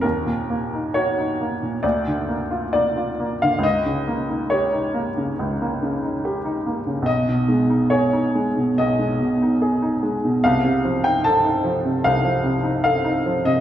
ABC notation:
X:1
M:4/4
L:1/16
Q:1/4=71
K:Abdor
V:1 name="Upright piano"
B4 d4 =d4 d3 f | e4 d8- d2 z2 | e4 d4 e8 | f3 =g =a4 f4 f3 e |]
V:2 name="Upright piano"
E,, B,, B, E G E B, B,, =D,, =D, B, F B, F B, D, | D,, D, B, E =G E B, D, D,, B, D, E G E B, D, | C,, C, A, E A E A, C, C,, A, C, E A E A, C, | =C,, =C, F, E =A E F, C, C,, F, C, E A E F, C, |]